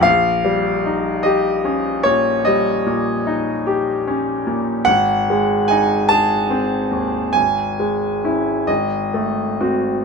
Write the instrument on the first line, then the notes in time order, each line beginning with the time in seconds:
grand piano
0.01 A#1 F5
0.45 G3
0.85 D#4
1.23 G4 D#5
1.65 C#4
2.03 A#2 C#5
2.45 G3 D#5
2.87 A#2
3.27 D#4
3.67 G4
4.07 C#4
4.47 A#2
4.85 G#1 F#5
5.30 G#3
5.68 D#4 G#5
6.09 G#4 A5
6.50 C4
6.91 D#2
7.33 G#1 G#5
7.79 G#3
8.24 C#4 E4
8.67 G#1 D#5
9.14 A3
9.60 C4 F#4